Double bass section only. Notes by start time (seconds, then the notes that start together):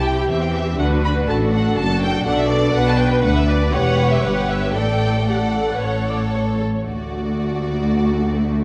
Already playing: C2
0.29 E2
0.79 D2
1.28 A1
1.77 F#1
2.26 B1
2.75 B1
3.24 D2
3.74 E1
4.24 G1
4.76 A1
5.82 A1
6.86 D2